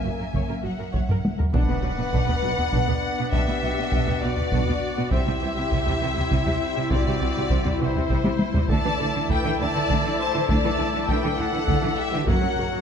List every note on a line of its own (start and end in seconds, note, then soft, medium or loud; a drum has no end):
0.00 0.10 F#1 soft
0.00 0.63 A#3 medium
0.00 1.32 E5 medium
0.00 0.59 G#5 medium
0.04 0.10 F#2 soft
0.04 0.10 F#4 soft
0.19 0.25 F#2 soft
0.19 0.25 A#4 soft
0.33 0.40 F#1 soft
0.33 0.39 F#2 soft
0.33 0.40 C#5 soft
0.33 taiko medium
0.48 0.55 F#2 soft
0.48 0.54 A#4 soft
0.62 0.70 F#1 soft
0.62 0.70 F#2 soft
0.62 0.68 F#4 soft
0.62 1.34 F#5 soft
0.78 0.85 F#2 soft
0.78 0.84 A#4 soft
0.93 1.00 F#1 medium
0.93 1.00 F#2 medium
0.93 0.99 C#5 medium
0.93 taiko medium
1.09 1.15 F#2 soft
1.09 1.15 A#4 soft
1.09 taiko low-mid medium
1.25 taiko high medium
1.39 1.45 F#2 soft
1.39 1.45 A#4 soft
1.39 taiko low medium
1.52 1.60 B1 medium
1.52 1.59 B2 medium
1.52 5.08 B3 medium
1.52 1.59 D4 medium
1.52 5.08 D4 medium
1.52 3.28 B4 medium
1.52 5.08 B4 medium
1.52 5.08 D5 medium
1.52 5.07 F#5 medium
1.52 3.29 F#5 loud
1.52 taiko loud
1.52 impact medium
1.69 1.75 B2 soft
1.69 1.74 B3 soft
1.83 1.89 B1 soft
1.83 1.89 B2 soft
1.83 1.89 F#3 soft
1.98 2.04 B2 soft
1.98 2.04 B3 soft
2.13 2.20 B1 medium
2.13 2.19 B2 medium
2.13 2.19 D4 medium
2.13 taiko medium
2.28 2.34 B2 soft
2.28 2.34 B3 soft
2.28 taiko low soft
2.42 2.50 B1 soft
2.42 2.50 B2 soft
2.42 2.48 F#3 soft
2.58 2.65 B2 soft
2.58 2.64 B3 soft
2.58 taiko low soft
2.73 2.79 B1 medium
2.73 2.79 B2 medium
2.73 2.79 D4 medium
2.73 taiko medium
2.88 2.94 B2 soft
2.88 2.94 B3 medium
2.88 taiko low soft
3.19 3.24 B2 medium
3.19 3.25 B3 soft
3.31 3.39 B1 medium
3.31 3.39 B2 medium
3.31 3.39 D4 medium
3.31 4.19 G4 medium
3.31 4.22 E5 medium
3.31 taiko medium
3.47 3.54 B2 medium
3.47 3.53 B3 soft
3.63 3.69 B1 medium
3.63 3.70 B2 medium
3.63 3.69 F#3 soft
3.78 3.84 B2 soft
3.78 3.84 B3 soft
3.92 3.99 B1 medium
3.92 3.99 B2 medium
3.92 3.99 D4 medium
3.92 taiko medium
4.06 4.14 B2 soft
4.06 4.12 B3 soft
4.06 taiko low soft
4.21 4.29 B1 medium
4.21 4.30 B2 soft
4.21 4.27 F#3 soft
4.21 5.12 F#4 medium
4.21 5.12 D5 medium
4.36 4.45 B2 soft
4.36 4.42 B3 soft
4.36 taiko low soft
4.52 4.59 B1 medium
4.52 4.59 B2 medium
4.52 4.58 D4 medium
4.52 taiko medium
4.66 4.74 B2 soft
4.66 4.73 B3 soft
4.66 taiko low soft
4.97 5.05 B2 soft
4.97 5.03 B3 medium
5.11 5.19 C2 medium
5.11 5.20 C3 medium
5.11 8.53 G3 medium
5.11 5.17 C4 medium
5.11 8.54 C4 medium
5.11 8.65 E4 medium
5.11 8.53 E4 medium
5.11 8.54 E4 medium
5.11 6.91 G4 medium
5.11 8.53 C5 medium
5.11 8.53 E5 medium
5.11 6.87 E5 medium
5.11 taiko medium
5.27 5.34 C3 soft
5.27 5.32 G3 soft
5.42 5.48 C2 soft
5.42 5.49 C3 medium
5.42 5.47 E3 soft
5.55 5.64 C3 soft
5.55 5.61 G3 soft
5.71 5.78 C2 medium
5.71 5.78 C3 medium
5.71 5.77 C4 medium
5.71 taiko medium
5.85 5.94 C3 soft
5.85 5.91 G3 medium
5.85 taiko low soft
6.00 6.08 C2 soft
6.00 6.08 C3 soft
6.00 6.06 E3 medium
6.14 6.23 C3 soft
6.14 6.20 G3 soft
6.14 taiko low soft
6.31 6.37 C2 medium
6.31 6.37 C3 medium
6.31 6.37 C4 medium
6.31 taiko medium
6.46 6.52 C3 soft
6.46 6.52 G3 medium
6.46 taiko low soft
6.76 6.82 C3 medium
6.76 6.82 G3 medium
6.90 6.97 C2 medium
6.90 6.96 C3 medium
6.90 6.97 C4 medium
6.90 7.79 F#4 medium
6.90 7.81 D5 medium
6.90 taiko loud
7.06 7.12 C3 soft
7.06 7.13 G3 soft
7.20 7.27 C2 medium
7.20 7.27 C3 medium
7.20 7.26 E3 soft
7.36 7.42 C3 soft
7.36 7.42 G3 soft
7.49 7.57 C2 medium
7.49 7.56 C3 medium
7.49 7.55 C4 medium
7.49 taiko medium
7.65 7.71 C3 medium
7.65 7.71 G3 medium
7.65 taiko low soft
7.79 7.87 C2 medium
7.79 7.87 C3 medium
7.79 7.85 E3 medium
7.79 8.70 E4 medium
7.79 8.69 C5 medium
7.95 8.02 C3 medium
7.95 8.01 G3 medium
7.95 taiko low soft
8.08 8.16 C2 medium
8.08 8.17 C3 medium
8.08 8.14 C4 medium
8.08 taiko medium
8.24 8.32 C3 medium
8.24 8.30 G3 medium
8.24 taiko high medium
8.39 taiko high medium
8.54 8.61 C3 medium
8.54 8.61 G3 medium
8.54 taiko low medium
8.68 8.76 D2 medium
8.68 8.76 D3 medium
8.68 8.75 A3 medium
8.68 12.24 A3 medium
8.68 12.23 E4 medium
8.68 12.24 E4 medium
8.68 12.25 E4 medium
8.68 12.29 A4 medium
8.68 9.29 D5 medium
8.68 12.29 D5 medium
8.68 12.24 E5 medium
8.68 9.28 A5 loud
8.68 taiko medium
8.84 8.91 D3 medium
8.84 8.90 E3 medium
8.99 9.06 D2 medium
8.99 9.05 D3 soft
8.99 9.06 D3 medium
9.15 9.21 D3 soft
9.15 9.21 E3 soft
9.29 9.35 D2 medium
9.29 9.36 D3 medium
9.29 9.36 A3 medium
9.29 9.58 B4 medium
9.29 9.60 G5 loud
9.29 taiko medium
9.44 9.51 D3 medium
9.44 9.50 E3 medium
9.59 9.66 D2 medium
9.59 9.65 D3 medium
9.59 9.66 D3 medium
9.59 10.20 D5 medium
9.59 10.18 A5 loud
9.75 9.81 D3 medium
9.75 9.80 E3 medium
9.89 9.95 D2 medium
9.89 9.96 D3 medium
9.89 9.95 A3 medium
9.89 taiko medium
10.03 10.10 D3 medium
10.03 10.09 E3 medium
10.19 10.48 C5 medium
10.19 10.48 A5 loud
10.33 10.40 D3 medium
10.33 10.39 E3 medium
10.48 10.55 D2 medium
10.48 10.56 D3 medium
10.48 10.54 A3 medium
10.48 11.07 D5 medium
10.48 11.07 A5 loud
10.48 taiko loud
10.64 10.71 D3 medium
10.64 10.70 E3 medium
10.78 10.85 D2 medium
10.78 10.84 D3 soft
10.78 10.85 D3 medium
10.93 11.00 D3 soft
10.93 10.99 E3 medium
11.07 11.14 D2 medium
11.07 11.15 D3 medium
11.07 11.13 A3 medium
11.07 11.38 B4 medium
11.07 11.38 G5 medium
11.07 taiko medium
11.22 11.30 D3 medium
11.22 11.28 E3 medium
11.37 11.44 D2 medium
11.37 11.43 D3 medium
11.37 11.45 D3 medium
11.37 11.96 A4 medium
11.37 11.98 F#5 loud
11.52 11.59 D3 medium
11.52 11.58 E3 medium
11.67 11.74 D2 medium
11.67 11.75 D3 medium
11.67 11.73 A3 medium
11.67 taiko medium
11.82 11.90 D3 medium
11.82 11.88 E3 medium
11.96 12.27 G4 medium
11.96 12.28 E5 medium
12.12 12.20 D3 medium
12.12 12.18 E3 medium
12.27 12.33 F#1 medium
12.27 12.35 F#2 medium
12.27 12.33 A#3 medium
12.27 12.81 A#3 medium
12.27 12.81 C#4 medium
12.27 12.81 F#4 medium
12.27 12.81 A#4 medium
12.27 12.81 C#5 medium
12.27 12.81 F#5 medium
12.27 taiko loud
12.41 12.49 F#2 soft
12.41 12.48 F#3 medium
12.57 12.63 F#1 medium
12.57 12.65 F#2 medium
12.57 12.64 C#3 soft
12.72 12.80 F#2 soft
12.72 12.78 F#3 soft